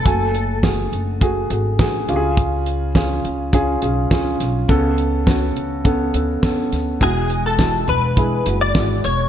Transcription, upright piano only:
<<
  \new Staff \with { instrumentName = "Upright piano" } { \time 4/4 \key fis \minor \tempo 4 = 104 <a fis' gis''>4 <a fis' gis'>4 <a fis' gis'>8 <a fis' gis'>8 <a fis' gis'>8 <cis' eis' g' gis'>8~ | <cis' eis' g' gis'>4 <cis' eis' gis'>4 <cis' eis' gis'>8 <cis' eis' gis'>8 <cis' eis' gis'>4 | <b cis' a'>4 <b cis' fis'>4 <b cis' a'>8 <b cis' a'>8 <b cis' a'>4 | <gis e' fis'>4 <gis e' fis'>4 <gis e' gis'>8 <gis e' fis'>8 <gis e' fis'>4 | }
  \new Staff \with { instrumentName = "Upright piano" } { \clef bass \time 4/4 \key fis \minor r2. r8 cis8~ | cis4 r2. | cis4. r2 r8 | e4. r2 r8 | }
>>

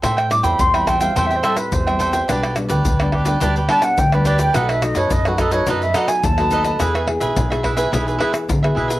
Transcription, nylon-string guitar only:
\new Staff \with { instrumentName = "Nylon-string guitar" } { \time 4/4 \key a \minor \tempo 4 = 106 << { r8 <g c' e'>8. <g c' e'>8 <g c' e'>16 <g c' e'>8 <g c' e'>8. <g c' e'>8. | <g b d'>8 <g b d'>8 r16 <g b d'>8 <g b d'>16 <g b d'>16 r16 <g b d'>8. <g b d'>8. | <fis a dis'>8 <fis a dis'>8 r16 <fis a dis'>8 <fis a dis'>16 <fis a dis'>16 r16 <fis a dis'>8 r16 <fis a dis'>8. | <b e' gis'>8 <b e' gis'>8 r16 <b e' gis'>8 <b e' gis'>16 <b e' gis'>8 <b e' gis'>8. <b e' gis'>8. | } \\ { a,4 e4 a,4 e4 | b,4 b,4 b,4 b,4 | b,4 fis,4 b,4 fis,4 | e4 b,4 e4 b,4 | } >> }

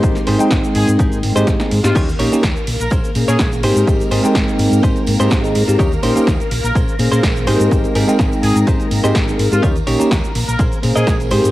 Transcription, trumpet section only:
\new Staff \with { instrumentName = "Trumpet section" } { \time 4/4 \key aes \major \tempo 4 = 125 r4. aes'16 r2 f'16 | r4. r16 bes'16 r8. aes'16 aes'16 r8. | r1 | r4. r16 bes'16 r2 |
r4. aes'16 r2 f'16 | r4. r16 bes'16 r8. aes'16 aes'16 r8. | }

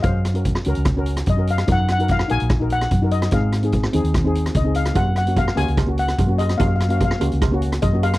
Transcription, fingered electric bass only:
\new Staff \with { instrumentName = "Fingered electric bass" } { \clef bass \time 4/4 \key ges \lydian \tempo 4 = 146 ges,4. des,16 des,4~ des,16 ges,4 | ges,4. bes,,16 bes,,4~ bes,,16 ges,4 | aes,4. ees,16 ees,4~ ees,16 des,4 | ges,4. des,16 des,4~ des,16 ges,4 |
ges,4. des,16 des,4~ des,16 ges,4 | }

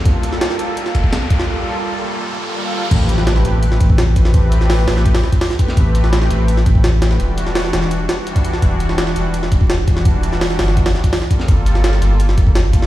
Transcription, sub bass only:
\new Staff \with { instrumentName = "Sub bass" } { \clef bass \time 4/4 \key a \phrygian \tempo 4 = 168 r1 | r1 | a,,4. a,,4 a,,4. | a,,4. a,,4 r4. |
a,,4. a,,4 a,,4. | e,,4. e,,4 r4. | e,,4. e,,4 e,,4. | e,,4. g,,4 r4. |
g,,4. g,,4 g,,4. | }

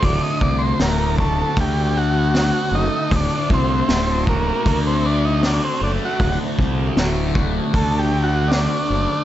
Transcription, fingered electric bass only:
\new Staff \with { instrumentName = "Fingered electric bass" } { \clef bass \time 4/4 \tempo 4 = 78 d,,16 r16 c,8 d,,4 d,4. fis,,16 r16 | d,,16 r16 c,8 d,,4 d,4. fis,,16 r16 | d,,16 r16 c,8 d,,4 d,4. fis,,16 r16 | }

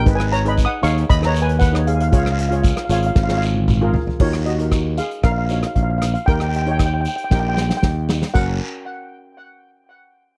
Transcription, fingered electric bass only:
\new Staff \with { instrumentName = "Fingered electric bass" } { \clef bass \time 4/4 \key fis \major \tempo 4 = 116 gis,,4. dis,8 dis,2 | cis,4. gis,,8 gis,,2 | dis,2 ais,,4 ais,,4 | dis,2 ais,,4 dis,4 |
fis,,8 r2. r8 | }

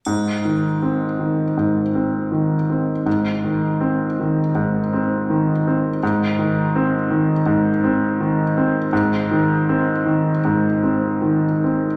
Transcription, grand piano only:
\new Staff \with { instrumentName = "Grand piano" } { \clef bass \time 4/4 \key aes \major \tempo 4 = 80 aes,8 ees8 c'8 ees8 aes,8 c'8 ees8 c'8 | aes,8 ees8 c'8 ees8 aes,8 c'8 ees8 c'8 | aes,8 ees8 c'8 ees8 aes,8 c'8 ees8 c'8 | aes,8 ees8 c'8 ees8 aes,8 c'8 ees8 c'8 | }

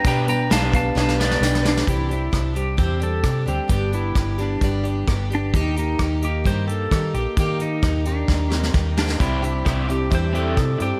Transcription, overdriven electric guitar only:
\new Staff \with { instrumentName = "Overdriven electric guitar" } { \time 4/4 \key g \mixolydian \tempo 4 = 131 <b d' g'>8 <b d'>8 <b d' g'>8 <b d'>8 <b d'>8 <b d' g'>8 <b d'>8 <b d'>8 | r1 | r1 | r1 |
r1 | <c' e' g'>8 <c' e'>8 <c' e' g'>8 <c' e'>8 <c' e'>8 <c' e' g'>8 <c' e'>8 <c' e'>8 | }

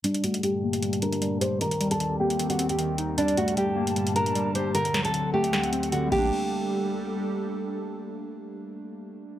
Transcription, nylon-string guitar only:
\new Staff \with { instrumentName = "Nylon-string guitar" } { \time 4/4 \key g \minor \tempo 4 = 153 d'8 fis'8 g'4. bes'4 c''8 | bes'8. a'8. g'8. fis'8 g'4~ g'16 | d'8 fis'8 g'4. bes'4 c''8 | bes'8. a'8. g'4. fis'8 g'8~ |
g'2. r4 | r1 | }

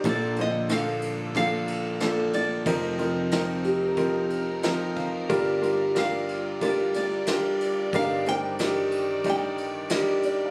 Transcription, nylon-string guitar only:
\new Staff \with { instrumentName = "Nylon-string guitar" } { \time 4/4 \key g \minor \tempo 4 = 91 d''8 ees''8 f''4 f''4. d''8~ | d''4. r2 r8 | r4 f''4 d''8 d''4. | f''8 g''4. g''4. r8 | }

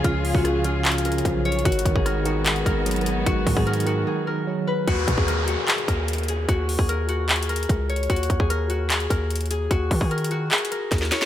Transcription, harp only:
\new Staff \with { instrumentName = "Harp" } { \time 4/4 \key ees \minor \tempo 4 = 149 f'8. ges'16 aes'8 f'8 aes'8 bes'4 des''8 | ges'8. aes'16 bes'8 ges'8 aes'8 bes'4 aes'8 | ges'8. aes'16 bes'8 ges'8 aes'8 bes'4 ces''8 | ges'8. aes'16 bes'8 ges'8 aes'8 bes'4 aes'8 |
ges'8. aes'16 bes'8 ges'8 aes'8 bes'4 des''8 | ges'8. aes'16 bes'8 ges'8 aes'8 bes'4 aes'8 | ges'8. aes'16 bes'8 ges'8 aes'8 bes'4 des''8 | }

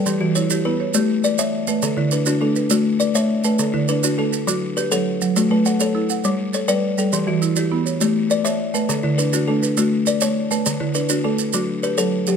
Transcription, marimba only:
<<
  \new Staff \with { instrumentName = "Marimba" } { \time 12/8 \key a \mixolydian \tempo 4. = 136 g'4 e'8 g'8 e'8 cis''4. b'4. r8 | a'4 d'8 fis'8 d'8 b'4. b'4. r8 | a'4 d'8 fis'8 d'8 b'4. g'4. r8 | fis'4 a'8 cis''8 a'8 fis''4. a'4. r8 |
g'4 e'8 g'8 e'8 cis''4. b'4. r8 | a'4 d'8 fis'8 d'8 b'4. b'4. r8 | r4 d'8 fis'8 d'8 b'4. g'4. r8 | }
  \new Staff \with { instrumentName = "Marimba" } { \time 12/8 \key a \mixolydian g8 e4 r8 b4 g'8 r4 a4 a8~ | a8 d4 r8 a4 fis'8 r4 a4 a8~ | a8 d4 r8 a4 fis'8 r4 fis4 fis8~ | fis8 a4 r8 e'4 cis''8 r4 g4 g8~ |
g8 e4 r8 b4 g'8 r4 a4 a8~ | a8 d4 r8 a4 fis'8 r4 a4 a8~ | a8 d4 r8 a4 fis'8 r4 fis4 fis8 | }
>>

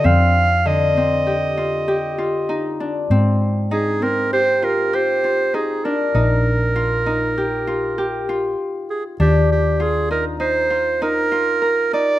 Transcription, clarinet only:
\new Staff \with { instrumentName = "Clarinet" } { \time 5/4 \key ees \major \tempo 4 = 98 f''4 ees''2.~ ees''8 r8 | r4 aes'8 bes'8 c''8 bes'8 c''4 aes'8 bes'8~ | bes'1 r8 aes'8 | g'8 g'8 aes'8 bes'8 c''4 bes'4. d''8 | }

